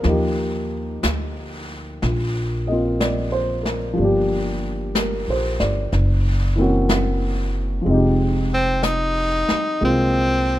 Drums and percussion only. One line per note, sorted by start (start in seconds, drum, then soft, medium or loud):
0.04 brush sweep soft
0.04 snare soft
1.03 brush sweep soft
1.03 snare soft
1.03 hi-hat pedal soft
2.02 brush sweep soft
2.02 snare soft
3.01 brush sweep soft
3.01 snare soft
3.01 hi-hat pedal soft
3.65 snare soft
3.98 brush sweep soft
4.95 brush sweep soft
4.95 snare soft
4.95 hi-hat pedal soft
5.60 snare soft
5.92 brush sweep soft
5.92 snare soft
6.89 brush sweep soft
6.89 snare soft
6.89 hi-hat pedal soft
7.85 brush sweep soft
8.83 brush sweep soft
8.83 snare soft
8.83 hi-hat pedal soft
9.49 snare soft
9.81 brush sweep soft